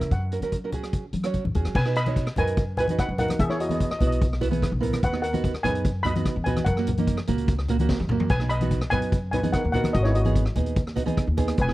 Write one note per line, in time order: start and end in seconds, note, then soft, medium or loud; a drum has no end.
0.00 0.09 C#3 medium
0.00 0.11 C#4 medium
0.00 0.11 E4 medium
0.00 0.12 A#4 medium
0.00 0.12 E5 medium
0.00 cross-stick medium
0.00 closed hi-hat medium
0.11 0.37 F#2 medium
0.11 1.31 F#5 medium
0.11 kick medium
0.11 closed hi-hat soft
0.32 0.38 C#4 medium
0.32 0.38 F#4 medium
0.32 0.38 A#4 medium
0.32 closed hi-hat medium
0.41 1.00 F#3 medium
0.41 0.54 C#4 medium
0.41 0.55 F#4 medium
0.41 0.55 A#4 medium
0.41 closed hi-hat medium
0.41 high conga medium
0.52 kick medium
0.52 closed hi-hat medium
0.64 0.69 C#4 medium
0.64 0.70 F#4 medium
0.64 0.70 A#4 medium
0.72 1.04 C#4 medium
0.72 1.04 F#4 medium
0.72 1.04 G#4 medium
0.72 closed hi-hat medium
0.72 low conga medium
0.83 cross-stick medium
0.83 closed hi-hat medium
0.93 kick medium
0.93 closed hi-hat medium
1.13 1.39 F#3 medium
1.13 closed hi-hat medium
1.13 high conga medium
1.23 1.43 C#4 medium
1.23 1.43 F#4 medium
1.23 1.43 C#5 medium
1.23 cross-stick medium
1.23 closed hi-hat medium
1.33 kick medium
1.33 closed hi-hat medium
1.45 1.53 F#2 medium
1.45 high conga medium
1.45 low conga medium
1.54 1.64 E2 medium
1.54 1.75 C#4 medium
1.54 1.75 F#4 medium
1.54 1.75 G#4 medium
1.54 closed hi-hat medium
1.54 high conga medium
1.54 low conga medium
1.65 1.74 F#3 medium
1.65 cross-stick medium
1.65 closed hi-hat medium
1.75 2.26 B2 medium
1.75 1.95 B4 medium
1.75 1.97 G#5 loud
1.75 kick loud
1.75 crash loud
1.85 1.98 D#4 medium
1.85 1.98 F#4 medium
1.85 1.98 B4 medium
1.85 cross-stick medium
1.95 2.34 D#5 medium
1.95 2.34 B5 loud
1.95 closed hi-hat medium
2.06 2.25 D#4 medium
2.06 2.25 F#4 medium
2.06 2.25 C#5 medium
2.06 closed hi-hat medium
2.06 high conga medium
2.16 kick medium
2.16 closed hi-hat medium
2.27 cross-stick medium
2.36 2.97 F#2 medium
2.36 2.62 D#4 medium
2.36 2.62 F#4 medium
2.36 2.62 A#4 medium
2.36 2.76 B4 medium
2.36 2.76 G#5 loud
2.36 closed hi-hat medium
2.36 low conga medium
2.47 closed hi-hat medium
2.57 kick loud
2.57 closed hi-hat medium
2.77 2.85 D#4 medium
2.77 2.85 F#4 medium
2.77 2.97 B4 medium
2.77 2.85 B4 medium
2.77 2.97 G#5 medium
2.77 closed hi-hat medium
2.77 low conga medium
2.88 3.08 D#4 medium
2.88 3.08 F#4 medium
2.88 3.08 B4 medium
2.88 closed hi-hat medium
2.88 high conga medium
2.99 3.18 B4 medium
2.99 3.18 F#5 medium
2.99 kick medium
2.99 cross-stick medium
2.99 closed hi-hat medium
3.09 3.34 F#2 medium
3.18 3.38 D#4 medium
3.18 3.38 F#4 medium
3.18 3.38 A#4 medium
3.18 3.40 F#5 medium
3.18 closed hi-hat medium
3.18 low conga medium
3.28 cross-stick medium
3.28 closed hi-hat medium
3.28 high conga medium
3.39 3.90 E2 loud
3.39 3.49 G#4 medium
3.39 3.50 E5 loud
3.39 kick loud
3.39 closed hi-hat medium
3.50 3.62 B3 medium
3.50 3.59 E4 medium
3.50 3.62 E4 medium
3.50 3.62 G#4 medium
3.50 3.60 C#5 medium
3.50 cross-stick medium
3.60 3.67 F#4 medium
3.60 3.67 D#5 medium
3.60 closed hi-hat medium
3.69 3.89 B3 medium
3.69 3.89 E4 medium
3.69 3.89 G#4 medium
3.69 3.73 D#5 medium
3.69 closed hi-hat medium
3.69 high conga medium
3.74 3.81 D#5 medium
3.80 3.90 D#5 medium
3.80 kick medium
3.80 closed hi-hat medium
3.91 3.97 D#5 medium
3.91 cross-stick medium
3.99 4.60 B1 medium
3.99 4.25 B3 medium
3.99 4.26 E4 medium
3.99 4.26 F#4 medium
3.99 4.05 D#5 medium
3.99 closed hi-hat medium
3.99 low conga medium
4.07 4.13 D#5 medium
4.12 closed hi-hat medium
4.22 kick loud
4.22 closed hi-hat medium
4.33 cross-stick medium
4.41 4.48 B3 loud
4.41 4.48 E4 medium
4.41 4.48 F#4 loud
4.41 closed hi-hat medium
4.41 low conga medium
4.51 4.70 B3 medium
4.51 4.70 E4 medium
4.51 4.70 G#4 loud
4.51 closed hi-hat medium
4.51 high conga medium
4.62 kick medium
4.62 cross-stick medium
4.62 closed hi-hat medium
4.72 4.97 B1 medium
4.80 5.00 B3 medium
4.80 5.00 E4 medium
4.80 5.00 A#4 medium
4.80 closed hi-hat medium
4.80 low conga medium
4.93 cross-stick medium
4.93 closed hi-hat medium
4.93 high conga medium
5.03 5.54 D#2 loud
5.03 5.23 B4 medium
5.03 5.21 F#5 medium
5.03 kick loud
5.03 closed hi-hat medium
5.12 5.25 B3 medium
5.12 5.25 D#4 medium
5.12 5.25 F#4 medium
5.12 cross-stick medium
5.22 5.61 A#4 medium
5.22 5.65 F#5 medium
5.22 closed hi-hat medium
5.33 5.52 B3 medium
5.33 5.52 D#4 medium
5.33 5.52 F#4 medium
5.33 closed hi-hat medium
5.33 high conga medium
5.44 kick medium
5.44 closed hi-hat medium
5.54 cross-stick medium
5.63 6.24 F#2 medium
5.63 5.89 B3 medium
5.63 5.89 D#4 medium
5.63 5.89 G#4 medium
5.63 6.03 B4 medium
5.63 6.06 G#5 loud
5.63 closed hi-hat medium
5.63 low conga medium
5.75 closed hi-hat medium
5.85 kick loud
5.85 closed hi-hat medium
6.03 6.11 B3 medium
6.03 6.11 D#4 medium
6.03 6.12 F#4 medium
6.03 6.44 D#5 medium
6.03 6.46 B5 loud
6.03 closed hi-hat medium
6.03 low conga medium
6.16 6.34 B3 medium
6.16 6.34 D#4 medium
6.16 6.34 F#4 medium
6.16 closed hi-hat medium
6.16 high conga medium
6.25 kick medium
6.25 cross-stick medium
6.25 closed hi-hat medium
6.36 6.61 E2 medium
6.44 6.65 B3 medium
6.44 6.65 D#4 medium
6.44 6.65 F#4 medium
6.44 6.65 B4 medium
6.44 6.66 G#5 medium
6.44 closed hi-hat medium
6.44 low conga medium
6.56 cross-stick medium
6.56 closed hi-hat medium
6.56 high conga medium
6.65 7.17 F#2 loud
6.65 7.24 A#4 medium
6.65 7.23 F#5 medium
6.65 kick loud
6.65 closed hi-hat medium
6.77 6.89 A#3 medium
6.77 6.90 C#4 medium
6.77 6.90 F#4 medium
6.77 cross-stick medium
6.87 closed hi-hat medium
6.87 low conga medium
6.97 7.16 A#3 medium
6.97 7.16 C#4 medium
6.97 7.17 D#4 medium
6.97 closed hi-hat medium
6.97 high conga medium
7.07 kick medium
7.07 closed hi-hat medium
7.17 cross-stick medium
7.27 7.88 C#2 medium
7.27 7.53 A#3 medium
7.27 7.53 C#4 medium
7.27 7.53 F#4 loud
7.27 closed hi-hat medium
7.27 high conga medium
7.27 low conga medium
7.38 closed hi-hat medium
7.48 kick loud
7.48 closed hi-hat medium
7.58 cross-stick medium
7.68 7.76 A#3 medium
7.68 7.75 C#4 medium
7.68 7.76 F#4 loud
7.68 closed hi-hat medium
7.68 low conga medium
7.79 7.98 A#3 medium
7.79 7.98 C#4 medium
7.79 7.98 F#4 loud
7.79 closed hi-hat medium
7.79 high conga medium
7.89 kick medium
7.89 snare medium
7.99 8.25 F#2 medium
7.99 high tom medium
8.09 8.29 A#3 medium
8.09 8.29 C#4 medium
8.09 8.29 F#4 medium
8.09 mid tom medium
8.09 low conga medium
8.20 floor tom medium
8.20 high conga medium
8.29 8.81 B1 loud
8.29 8.49 B4 medium
8.29 8.51 G#5 loud
8.29 kick loud
8.29 closed hi-hat medium
8.29 crash medium
8.40 8.53 B3 medium
8.40 8.53 D#4 medium
8.40 8.53 F#4 medium
8.40 cross-stick medium
8.49 8.89 D#5 medium
8.49 8.92 B5 loud
8.49 closed hi-hat medium
8.61 8.80 B3 medium
8.61 8.80 D#4 medium
8.61 8.80 F#4 medium
8.61 closed hi-hat medium
8.61 high conga medium
8.71 kick medium
8.71 closed hi-hat medium
8.81 cross-stick medium
8.90 9.52 F#2 medium
8.90 9.16 B3 medium
8.90 9.16 D#4 medium
8.90 9.16 F#4 medium
8.90 9.30 B4 medium
8.90 9.30 G#5 loud
8.90 closed hi-hat medium
8.90 low conga medium
9.02 closed hi-hat medium
9.12 kick loud
9.12 closed hi-hat medium
9.31 9.39 B3 medium
9.31 9.39 D#4 medium
9.31 9.39 F#4 medium
9.31 9.52 B4 medium
9.31 9.53 G#5 medium
9.31 closed hi-hat medium
9.31 low conga medium
9.43 9.62 B3 medium
9.43 9.62 D#4 medium
9.43 9.62 G#4 medium
9.43 closed hi-hat medium
9.43 high conga medium
9.53 9.74 A#4 medium
9.53 9.71 F#5 medium
9.53 kick medium
9.53 cross-stick medium
9.53 closed hi-hat medium
9.65 9.89 D#2 medium
9.72 9.92 B3 medium
9.72 9.92 D#4 medium
9.72 9.92 F#4 medium
9.72 9.93 A#4 medium
9.72 9.94 F#5 medium
9.72 closed hi-hat medium
9.72 low conga medium
9.84 cross-stick medium
9.84 closed hi-hat medium
9.84 high conga medium
9.93 10.45 G#1 loud
9.93 10.05 F#4 medium
9.93 10.05 D#5 medium
9.93 kick loud
9.93 closed hi-hat medium
10.03 10.17 B3 medium
10.03 10.17 D#4 medium
10.03 10.14 E4 medium
10.03 10.17 G#4 medium
10.03 10.13 C#5 medium
10.03 cross-stick medium
10.15 10.73 F#4 medium
10.15 10.72 D#5 medium
10.15 closed hi-hat medium
10.25 10.43 B3 medium
10.25 10.44 D#4 medium
10.25 10.43 G#4 medium
10.25 closed hi-hat medium
10.25 high conga medium
10.35 kick medium
10.35 closed hi-hat medium
10.46 cross-stick medium
10.56 11.15 D#2 medium
10.56 10.81 B3 medium
10.56 10.80 D#4 medium
10.56 10.80 G#4 medium
10.56 closed hi-hat medium
10.56 low conga medium
10.66 closed hi-hat medium
10.76 kick loud
10.76 closed hi-hat medium
10.87 cross-stick medium
10.95 11.02 B3 medium
10.95 11.03 D#4 medium
10.95 11.02 F#4 loud
10.95 closed hi-hat medium
10.95 low conga medium
11.06 11.25 B3 medium
11.06 11.25 D#4 medium
11.06 11.25 G#4 loud
11.06 closed hi-hat medium
11.06 high conga medium
11.17 kick medium
11.17 cross-stick medium
11.17 closed hi-hat medium
11.27 11.52 D#2 medium
11.37 11.56 B3 medium
11.37 11.56 D#4 medium
11.37 11.56 G#4 medium
11.37 closed hi-hat medium
11.37 low conga medium
11.48 cross-stick medium
11.48 closed hi-hat medium
11.57 11.73 E1 medium
11.57 11.73 B4 medium
11.57 kick loud
11.57 closed hi-hat medium
11.61 11.73 G#5 loud
11.67 11.73 B3 medium
11.67 11.73 E4 medium
11.67 11.73 G#4 medium
11.67 cross-stick medium